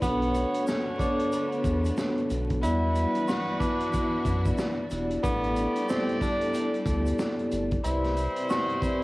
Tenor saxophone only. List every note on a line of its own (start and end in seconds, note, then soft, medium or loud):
0.02 0.63 B3 loud
0.67 0.96 C#4 medium
0.99 1.49 D4 medium
2.63 3.24 E4 loud
3.27 3.57 F#4 medium
3.60 4.54 D4 medium
5.23 5.85 B3 loud
5.89 6.18 C4 medium
6.22 6.71 D4 medium
7.84 8.45 E4 medium
8.50 8.79 F#4 medium
8.83 9.04 E4 medium